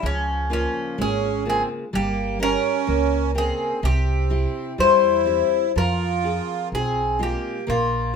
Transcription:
0.03 C#2 C#3 F3 C#4
0.50 F3 A#3 C#4 F4
0.98 G#1 G#3 C#4 G#4
1.45 C#3 A#3 C4 F4
1.50 G#4
1.93 G1 G3 A#3 G4
2.39 C#4 G4 A#4
2.87 C#2 A#3
3.35 C#3 C4 G#4 A#4 G5
3.83 C2 C3 C4 G4
4.30 C4 E4 G4
4.78 E2 G3 E4 C5
5.26 C4 E4 G4
5.76 F2 F3 F4 A#4
6.24 C4 F4 G#4
6.72 B1 C4 G#4
7.19 G#3 A#3 C4 F4 G4
7.67 A#1 A#3 F4

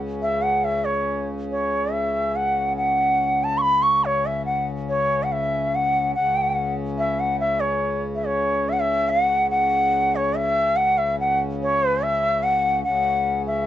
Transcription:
Already playing: C#2 C#3
0.22 E5
0.42 F#5
0.64 E5
0.85 C#5
1.51 C#5
1.92 E5
2.36 F#5
2.76 F#5
3.44 A5
3.58 B5 C#6
3.82 C#6
4.05 C#5
4.26 E5
4.46 F#5
4.89 C#5
5.23 F#5
5.32 E5
5.75 F#5
6.15 C#2 C#3 F#5
6.98 E5
7.20 F#5
7.40 E5
7.60 C#5
8.15 E5
8.25 C#5
8.69 E5 F#5
8.80 E5
9.09 F5
9.24 F#5
9.50 F#5
10.16 C#5
10.37 E5
10.76 F#5
10.98 E5
11.20 F#5
11.63 C#5
11.88 B4
12.03 E5
12.43 F#5
12.84 C#2 C#3 F#5
13.47 E5

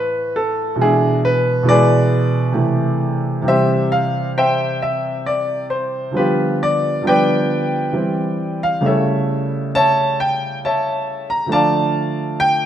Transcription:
Already playing: A2 E3 A3 B4
0.36 A4
0.76 B2 E3 G#3
0.81 D4 E4 G#4
1.25 B4
1.63 B2 E3 G#3 E4
1.69 G#4 B4 D5
2.52 C3 E3 A3 E4
3.42 C3 E3 G3 C4
3.48 G4 C5 E5
3.92 F5
4.38 C5 E5 G5
4.82 E5
5.26 D5
5.70 C5
6.11 D3 F3 G3 B3
6.17 F4 G4 B4
6.63 D5
7.02 D3 F3 G3 B3
7.07 B4 D5 G5
7.93 E3 G3 C4
8.63 F5
8.81 C#3 G3 A3 E4
8.86 A4 C#5 E5
9.75 C#5 E5 A5
10.20 G5
10.65 C#5 E5 A5
11.30 A#5
11.46 D3 F3 A3 D4
11.52 D5 F5 A5
12.40 G5

